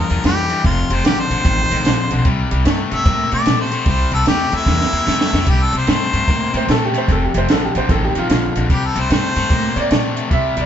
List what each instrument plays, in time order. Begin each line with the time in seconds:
0.00 harmonica A#4
0.10 upright bass E2, overdriven electric guitar G2 F3, closed hi-hat
0.24 upright bass F2, overdriven electric guitar G2 E3, harmonica G4, snare, closed hi-hat
0.50 overdriven electric guitar G2 E3, closed hi-hat
0.64 upright bass F1, overdriven electric guitar F2 C3, harmonica F4, kick, closed hi-hat
0.90 upright bass F1, overdriven electric guitar F2 C3, harmonica C5, closed hi-hat
1.04 upright bass A1, overdriven electric guitar F2 D3, harmonica G4, snare, closed hi-hat
1.20 harmonica C5
1.30 upright bass A1, overdriven electric guitar F2 D3, closed hi-hat
1.45 upright bass A1, overdriven electric guitar F2 D#3, kick, closed hi-hat
1.71 upright bass A1, overdriven electric guitar F2 D#3, closed hi-hat
1.85 upright bass A#1, overdriven electric guitar F2 D3, snare, closed hi-hat
2.11 upright bass B1, overdriven electric guitar F2 D3, closed hi-hat
2.25 upright bass C2, overdriven electric guitar C3 G3, kick, closed hi-hat
2.51 upright bass C2, overdriven electric guitar C3 G3, closed hi-hat
2.65 upright bass G2, overdriven electric guitar C3 A3, snare, closed hi-hat
2.91 upright bass G2, overdriven electric guitar C3 A3, harmonica E5, closed hi-hat
3.06 upright bass A2, overdriven electric guitar C3 A#3, kick, closed hi-hat
3.32 upright bass A2, overdriven electric guitar C3 A#3, harmonica D5, closed hi-hat
3.46 upright bass A#2, overdriven electric guitar C3 A3, snare, closed hi-hat
3.61 harmonica C5
3.71 overdriven electric guitar C3 A3, closed hi-hat
3.86 upright bass C2, overdriven electric guitar C3 G3, harmonica C5, kick, closed hi-hat
4.11 upright bass C2, overdriven electric guitar C3 G3, harmonica A4, closed hi-hat
4.26 upright bass E2, overdriven electric guitar C3 A3, harmonica G4, snare, closed hi-hat
4.52 upright bass E2, overdriven electric guitar C3 A3, harmonica E4, closed hi-hat
4.66 upright bass E2, overdriven electric guitar C3 A#3, kick, snare
4.81 snare
4.92 upright bass E2, overdriven electric guitar C3 A#3
5.06 upright bass F2, overdriven electric guitar C3 A3, snare
5.21 snare
5.33 upright bass F2, overdriven electric guitar C3 A3, snare
5.47 upright bass C2, overdriven electric guitar C3 G3, harmonica G4, kick, closed hi-hat
5.63 harmonica A4
5.73 upright bass C2, overdriven electric guitar C3 G3, closed hi-hat
5.77 harmonica C5
5.87 upright bass G2, overdriven electric guitar C3 A3, harmonica C5, snare, closed hi-hat
6.13 upright bass G2, overdriven electric guitar C3 A3, closed hi-hat
6.27 upright bass A2, overdriven electric guitar C3 A#3, kick, snare, closed hi-hat
6.53 upright bass A2, overdriven electric guitar C3 A#3, upright piano C5, closed hi-hat
6.68 upright bass A#2, overdriven electric guitar C3 A3, upright piano A4, snare, closed hi-hat
6.85 upright piano G4
6.93 overdriven electric guitar C3 A3, closed hi-hat
6.98 upright piano C5
7.08 upright bass F1, overdriven electric guitar F2 C3, kick, closed hi-hat
7.12 upright piano A4
7.24 upright piano G4
7.34 upright bass F1, overdriven electric guitar F2 C3, upright piano C5, closed hi-hat
7.49 upright bass A1, overdriven electric guitar F2 D3, upright piano A4, snare, closed hi-hat
7.65 upright piano G4
7.75 upright bass A1, overdriven electric guitar F2 D3, upright piano C5, closed hi-hat
7.89 upright bass A1, overdriven electric guitar F2 D#3, upright piano A4, kick, closed hi-hat
8.04 upright piano G4
8.15 upright bass A1, overdriven electric guitar F2 D#3, upright piano F4, closed hi-hat
8.30 upright bass A#1, overdriven electric guitar F2 D3, snare, closed hi-hat
8.56 upright bass A#1, overdriven electric guitar F2 D3, closed hi-hat
8.70 upright bass C2, overdriven electric guitar C3 G3, harmonica G4, kick, closed hi-hat
8.86 harmonica A4
8.95 upright bass C2, overdriven electric guitar C3 G3, closed hi-hat
9.00 harmonica C5
9.10 upright bass G2, overdriven electric guitar C3 A3, harmonica C5, snare, closed hi-hat
9.36 upright bass G2, overdriven electric guitar C3 A3, closed hi-hat
9.50 upright bass A2, overdriven electric guitar C3 A#3, kick, closed hi-hat
9.75 upright bass A2, overdriven electric guitar C3 A#3, upright piano C#5, closed hi-hat
9.80 upright piano D5
9.90 upright bass A#2, overdriven electric guitar C3 A3, snare, closed hi-hat
10.16 overdriven electric guitar C3 A3, closed hi-hat
10.31 upright bass C2, overdriven electric guitar C3 G3, upright piano E5, kick, closed hi-hat
10.57 upright bass C2, overdriven electric guitar C3 G3, upright piano D5, closed hi-hat